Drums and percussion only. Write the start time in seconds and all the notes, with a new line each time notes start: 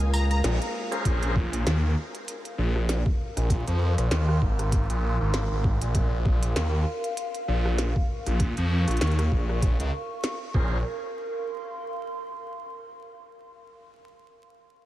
0.00 closed hi-hat
0.14 tambourine
0.31 closed hi-hat
0.44 snare, closed hi-hat
0.62 closed hi-hat
0.92 closed hi-hat
1.05 kick, closed hi-hat
1.23 closed hi-hat
1.36 kick
1.53 closed hi-hat
1.67 snare, closed hi-hat
2.15 closed hi-hat
2.28 closed hi-hat
2.45 closed hi-hat
2.76 cross-stick
2.89 snare, closed hi-hat
3.06 kick
3.37 cross-stick, closed hi-hat
3.50 kick, closed hi-hat
3.67 closed hi-hat
3.98 cross-stick, closed hi-hat
4.11 snare, closed hi-hat
4.29 cross-stick
4.42 kick
4.59 cross-stick, closed hi-hat
4.72 kick, closed hi-hat
4.90 closed hi-hat
5.34 snare, closed hi-hat
5.64 kick
5.82 closed hi-hat
5.95 kick, closed hi-hat
6.26 kick
6.43 closed hi-hat
6.56 snare, closed hi-hat
7.04 closed hi-hat
7.17 closed hi-hat
7.34 closed hi-hat
7.65 cross-stick
7.78 snare, closed hi-hat
7.96 kick
8.27 cross-stick, closed hi-hat
8.40 kick, closed hi-hat
8.57 closed hi-hat
8.88 cross-stick, closed hi-hat
8.91 closed hi-hat
8.97 closed hi-hat
9.01 snare, closed hi-hat
9.07 closed hi-hat
9.11 closed hi-hat
9.19 cross-stick, closed hi-hat
9.32 kick
9.49 cross-stick
9.62 kick, closed hi-hat
9.80 closed hi-hat
10.24 snare, closed hi-hat
10.54 kick